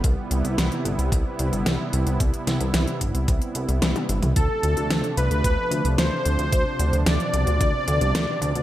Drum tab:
HH |x-xxxxxxx-xxx-xx|xxxxxxxxxxxxxxxx|x-xxxxxxx-xxx-xx|x-xxxxxxx-xxx-xx|
SD |----o-------o---|--o-o-------o---|----o-------o---|----o-------o---|
T1 |----------------|------------oo--|----------------|----------------|
T2 |----------------|---------------o|----------------|----------------|
BD |o-------o-------|o-----o-o-------|o-------o-------|o-------o-------|